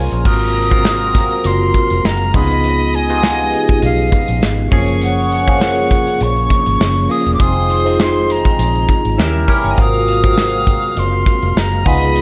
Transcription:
Already playing: C2 A#3 C#4 F4 G#4 A#4 C5 C#5 G#5 C6
0.12 A#1, closed hi-hat
0.25 G#1 C3 F#3 G#3 A#3 C4 F4 F#4 A#4 F5 A#5 D#6, kick, crash
0.55 closed hi-hat
0.70 C4 F4 F#4 A#4, kick, closed hi-hat
0.85 snare, closed hi-hat
1.15 kick, snare, closed hi-hat
1.31 closed hi-hat
1.44 F#1 C6, closed hi-hat
1.74 kick, closed hi-hat
1.90 F1, closed hi-hat
2.04 F#1 A#5, snare, closed hi-hat
2.22 closed hi-hat
2.34 C#2 C#3 F3 B3 D#4 F4 G#4 D#5 B5 D#6, kick, open hi-hat
2.51 closed hi-hat
2.64 closed hi-hat
2.80 closed hi-hat
2.94 G#5, closed hi-hat
3.09 B3 D#4 F4 G4, closed hi-hat
3.18 G#4
3.23 snare, closed hi-hat
3.54 closed hi-hat
3.69 kick, closed hi-hat
3.82 B1 F5, closed hi-hat
3.98 closed hi-hat
4.12 kick, closed hi-hat
4.28 A#1, closed hi-hat
4.43 G#1, snare, closed hi-hat
4.71 F#1 F3 A#3 C#4 G#4 C#5 C#6, kick, open hi-hat
4.88 closed hi-hat
5.02 F#5, closed hi-hat
5.32 closed hi-hat
5.47 F3 A#3 C#4 G#4, kick, closed hi-hat
5.61 snare, closed hi-hat
5.91 kick, closed hi-hat
6.07 closed hi-hat
6.21 A#1 C#6, closed hi-hat
6.36 closed hi-hat
6.50 kick, closed hi-hat
6.66 G#1, closed hi-hat
6.81 F#1, snare, closed hi-hat
6.97 closed hi-hat
7.09 A#3 C#4 F4 G#4 D#6, open hi-hat
7.26 E1, closed hi-hat
7.34 D6
7.39 F1 C3 D#3 G#3 C4 D#4 F4 G#4 C5 C6 D#6, kick, closed hi-hat
7.70 closed hi-hat
7.85 C4 D#4 F4 G#4, closed hi-hat
8.00 C6, snare, closed hi-hat
8.30 A#5, closed hi-hat
8.45 kick, closed hi-hat
8.59 A#1, closed hi-hat
8.75 closed hi-hat
8.89 kick, closed hi-hat
9.05 G#1, closed hi-hat
9.18 D#2 C#3 E3 G3 A#3 C#4 E4 G4 A#4 E5 E6, snare, closed hi-hat
9.48 C#4 E4 G4 A#4 A#5, kick, open hi-hat
9.56 B4 B5
9.64 G1 C#5 C#6, closed hi-hat
9.71 D#5 D#6
9.77 G#1 C3 F#3 G#3 C4 F4 F#4 A#4 F5 D#6 F6, kick, closed hi-hat
9.94 closed hi-hat
10.08 closed hi-hat
10.23 C4 F4 F#4 A#4, kick, closed hi-hat
10.37 snare, closed hi-hat
10.53 closed hi-hat
10.67 kick, closed hi-hat
10.83 closed hi-hat
10.97 F#1 C6, closed hi-hat
11.26 kick, closed hi-hat
11.42 F1, closed hi-hat
11.56 F#1 A#5, snare, closed hi-hat
11.73 closed hi-hat
11.85 C#2 C#3 F3 B3 D#4 F4 G#4 D#5 B5 D#6, kick, open hi-hat
12.02 closed hi-hat
12.16 closed hi-hat

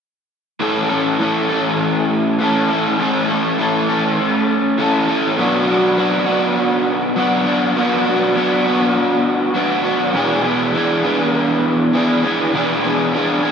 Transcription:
0.60 A2 E3 A3 C#4 A4
0.89 A3 C#4 A4
1.19 E3 A3 C#4 A4
1.49 A3 C#4 A4
2.39 E3 A3 C#4 A4
2.70 A3 C#4 A4
2.99 A2 E3 A3 C#4 A4
3.28 A3 C#4 A4
3.58 E3 A3 C#4 A4
3.89 A3 C#4 A4
4.78 E3 A3 C#4 A4
5.08 A3 C#4 A4
5.37 B2 F#3 B3 D4 F#4
5.68 B3 D4 F#4
5.97 F#3 B3 D4 F#4
6.26 B3 D4 F#4
7.16 F#3 B3 D4 F#4
7.46 B3 D4 F#4
7.76 B2 F#3 B3 D4 F#4
8.06 B3 D4 F#4
8.35 F#3 B3 D4 F#4
8.65 B3 D4 F#4
9.54 F#3 B3 D4 F#4
9.84 B3 D4 F#4
10.14 E2 B2 E3 B3 D4 G#4
10.43 E3 B3 D4 G#4
10.74 E3 B3 D4 G#4
11.03 E3 B3 D4 G#4
11.93 E3 B3 D4 G#4
12.22 E3 B3 D4 G#4
12.53 E2 B2 E3 B3 D4 G#4
12.83 E3 B3 D4 G#4
13.13 E3 B3 D4 G#4
13.43 E3 B3 D4 G#4

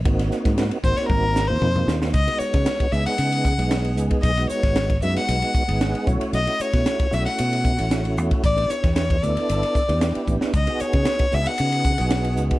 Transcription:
0.05 G#1 A#3 C4 D#4 F#4, kick, ride
0.19 snare, ride
0.32 snare, hi-hat pedal
0.45 G#2, kick, snare, ride
0.58 snare, ride
0.71 ride
0.83 G#1 A#3 C4 D#4 F#4 C5, kick, hi-hat pedal
0.96 C#5, snare, ride
1.08 G#1 A#4, kick, high tom
1.36 snare, hi-hat pedal
1.47 D#2 A#3 C4 D#4 F4 C5
1.62 F2, mid tom
1.76 mid tom
1.88 D#2, snare, hi-hat pedal
2.02 snare
2.14 C#2 D#5, kick, hi-hat pedal, ride
2.27 G#3 B3 D#4 F#4, ride
2.39 C#5, muted fingered electric bass stroke, hi-hat pedal
2.54 C#3, kick, snare, ride
2.66 snare, hi-hat pedal, ride
2.80 muted fingered electric bass stroke, kick, ride
2.92 C#2 G#3 B3 D#4 G#4 E5, snare, hi-hat pedal
3.06 F#5, snare, ride
3.18 C#3, hi-hat pedal, ride
3.32 ride
3.45 kick, hi-hat pedal
3.58 B1 G#3 B3 D#4 G#4, ride
3.71 snare, hi-hat pedal, ride
3.85 ride
3.97 C#2, hi-hat pedal
4.11 kick, ride
4.22 B1 D#5, kick, hi-hat pedal, ride
4.37 G#3 B3 D#4 F#4, ride
4.49 C#5, hi-hat pedal
4.63 G#1, kick, snare, ride
4.76 snare, hi-hat pedal, ride
4.90 kick, ride
5.02 F#2 G#3 B3 D#4 F#4 E5, hi-hat pedal
5.16 F#5, muted fingered electric bass stroke, snare, ride
5.28 B1, hi-hat pedal, ride
5.42 ride
5.54 muted fingered electric bass stroke, kick, hi-hat pedal
5.68 G#1 G#3 B3 D#4 G#4, ride
5.80 F#5, snare, hi-hat pedal, ride
5.95 ride
6.07 B1 A3 C#4 E4 F#4 C#5, kick, hi-hat pedal
6.21 ride
6.33 B1 D#5, hi-hat pedal, ride
6.46 A3 C#4 E4 F#4, ride
6.60 C#5, muted fingered electric bass stroke, hi-hat pedal
6.73 B2, kick, snare, ride
6.86 snare, hi-hat pedal, ride
7.00 muted fingered electric bass stroke, kick, ride
7.11 B1 A3 C#4 E4 F#4 E5, snare, hi-hat pedal
7.26 F#5, snare, ride
7.38 B2, hi-hat pedal, ride
7.53 ride
7.65 kick, hi-hat pedal
7.77 A1 A3 C#4 E4 F#4, ride
7.91 snare, hi-hat pedal, ride
8.05 ride
8.17 E2, hi-hat pedal
8.31 kick, ride
8.44 A1 D5, kick, hi-hat pedal, ride
8.56 B3 D4 E4 G4, ride
8.70 C#5, hi-hat pedal
8.84 E2, kick, snare, ride
8.96 C#5, snare, hi-hat pedal, ride
9.10 kick, ride
9.22 D2 B3 D4 E4 A4 D5, hi-hat pedal
9.37 muted fingered electric bass stroke, ride
9.49 G1, hi-hat pedal, ride
9.63 ride
9.75 muted fingered electric bass stroke, kick, hi-hat pedal
9.88 E2 B3 D4 E4 G4, ride
10.01 snare, hi-hat pedal, ride
10.15 muted fingered electric bass stroke, ride
10.27 A1, kick, hi-hat pedal
10.41 snare
10.54 C#2 D#5, kick, hi-hat pedal, ride
10.67 B3 D#4 F#4 G#4, ride
10.79 C#5, muted fingered electric bass stroke, hi-hat pedal
10.93 C#3, kick, ride
11.05 snare, hi-hat pedal, ride
11.19 muted fingered electric bass stroke, kick, ride
11.32 C#2 B3 D#4 F#4 G#4 E5, snare, hi-hat pedal
11.46 F#5, snare, ride
11.58 C#3, hi-hat pedal, ride
11.72 ride
11.84 kick, hi-hat pedal
11.98 B1 B3 D#4 F#4 G#4, ride
12.10 snare, hi-hat pedal, ride
12.25 ride
12.37 C#2, hi-hat pedal
12.51 kick, ride

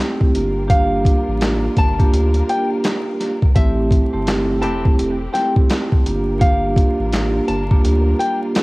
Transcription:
Already playing: A3 C4 G4
0.00 A3 C4 E4 G4, clap
0.21 kick
0.34 G1 G3 A#3 D4 F4 G4 A#4, closed hi-hat
0.67 A#3 D4 F4 G4 F5, kick, closed hi-hat
1.05 A#3 D4 F4 G4, kick, closed hi-hat
1.28 A1
1.41 snare, clap, closed hi-hat
1.77 G1 A5, kick, closed hi-hat
1.99 A#3 D4 F4 G4, kick, closed hi-hat
2.12 D2 A#3 D4 F4 G4, closed hi-hat
2.34 closed hi-hat
2.49 G5, closed hi-hat
2.84 snare, clap, closed hi-hat
3.21 snare, closed hi-hat
3.42 kick
3.55 A1 A3 C4 E4 G4 E5, kick, closed hi-hat
3.91 kick, closed hi-hat
4.13 G1 A3 C4 E4 G4
4.26 A3 C4 E4 G4, snare, clap, closed hi-hat
4.62 E1 E3 C4 G4 A5, closed hi-hat
4.85 kick
4.98 E1, closed hi-hat
5.32 A3 C4 E4 G4 G5, snare, closed hi-hat
5.56 kick
5.70 A3 C4 E4 G4, snare, clap, closed hi-hat
5.92 kick
6.05 G1 G3 A#3 D4 F4 G4 A#4, closed hi-hat
6.39 A#3 D4 F4 G4 F5, kick, closed hi-hat
6.76 A#3 D4 F4 G4, kick, closed hi-hat
6.99 A1
7.12 snare, clap, closed hi-hat
7.48 G1 A5, closed hi-hat
7.70 A#3 D4 F4 G4, kick
7.84 D2 A#3 D4 F4 G4, closed hi-hat
8.19 G5, closed hi-hat
8.55 snare, clap, closed hi-hat

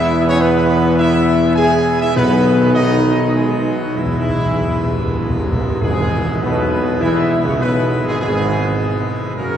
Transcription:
Already playing: E2 B2 E3 G#3 B3 E4 B4 E5
0.27 C#4 C#5
0.41 B3 B4
0.98 E4 E5
1.56 G#4 G#5
2.01 E4 E5
2.15 B1 B2 D#3 F#3 B3 D#4 B4
2.73 D#4 D#5
3.34 G#3 G#4
3.81 F#3 F#4
3.96 E2 B2 E3 G#3 E4 B4
4.05 E2
4.13 E2
4.21 E2
4.29 E2
4.37 E2
4.45 E2
4.52 E2
4.60 E2
4.68 E2
4.76 E2
4.83 E2
4.91 E2
4.99 E2
5.07 E2
5.15 E2
5.23 E2
5.30 E2
5.37 E2
5.44 E2
5.52 E2
5.61 E2
5.68 E2
5.81 G#1 E2 G#2 B2 G#3 E4 G#4 B4
6.41 B1 B2 B3 B4
7.00 E2 E3 E4 E5
7.45 C#2 C#3 C#4 C#5
7.59 B1 B2 B3 B4
8.04 G#1 G#2 G#3 G#4
8.20 G#1 G#2 G#3 G#4
9.35 F#1 F#2 C#3 F#3 A#3 C#4 F#4 A#4

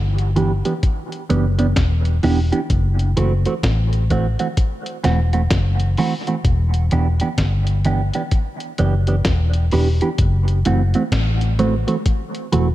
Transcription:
Already playing: G1
0.18 closed hi-hat
0.36 E3 B3 D4 G4, closed hi-hat
0.65 E3 B3 D4 G4, closed hi-hat
0.83 kick, closed hi-hat
1.12 closed hi-hat
1.30 F#1 E3 B3 D4 G4, closed hi-hat
1.58 E3 B3 D4 G4, closed hi-hat
1.76 E1, kick, snare, closed hi-hat
2.05 closed hi-hat
2.23 E1 E3 B3 D4 G4, open hi-hat
2.52 E3 B3 D4 G4, closed hi-hat
2.70 F#1, kick, closed hi-hat
2.99 closed hi-hat
3.17 F#1 E3 A3 C4 F#4, closed hi-hat
3.45 E3 A3 C4 F#4, closed hi-hat
3.63 A1, kick, snare, closed hi-hat
3.93 closed hi-hat
4.10 E3 A3 C4 F#4, kick, closed hi-hat
4.39 E3 A3 C4 F#4, closed hi-hat
4.57 kick, closed hi-hat
4.86 closed hi-hat
5.04 E1 E3 A3 C4 F#4, snare, closed hi-hat
5.33 E3 A3 C4 F#4, closed hi-hat
5.50 F#1, kick, snare, closed hi-hat
5.80 closed hi-hat
5.97 E3 A3 C4 F#4, open hi-hat
6.27 E3 A3 C4 F#4, closed hi-hat
6.45 E1, kick, closed hi-hat
6.74 closed hi-hat
6.91 E1 E3 B3 D4 G4, closed hi-hat
7.20 E3 B3 D4 G4, closed hi-hat
7.38 G1, kick, snare, closed hi-hat
7.67 closed hi-hat
7.85 E3 B3 D4 G4, closed hi-hat
8.14 E3 B3 D4 G4, closed hi-hat
8.31 kick, closed hi-hat
8.60 closed hi-hat
8.78 F#1 E3 B3 D4 G4, closed hi-hat
9.07 E3 B3 D4 G4, closed hi-hat
9.25 E1, kick, snare, closed hi-hat
9.54 closed hi-hat
9.72 E1 E3 B3 D4 G4, open hi-hat
10.01 E3 B3 D4 G4, closed hi-hat
10.18 F#1, kick, closed hi-hat
10.48 closed hi-hat
10.65 F#1 E3 A3 C4 F#4, closed hi-hat
10.94 E3 A3 C4 F#4, closed hi-hat
11.12 A1, kick, snare, closed hi-hat
11.41 closed hi-hat
11.59 E3 A3 C4 F#4, closed hi-hat
11.87 E3 A3 C4 F#4, closed hi-hat
12.06 kick, closed hi-hat
12.35 closed hi-hat
12.52 E1 E3 A3 C4 F#4, closed hi-hat

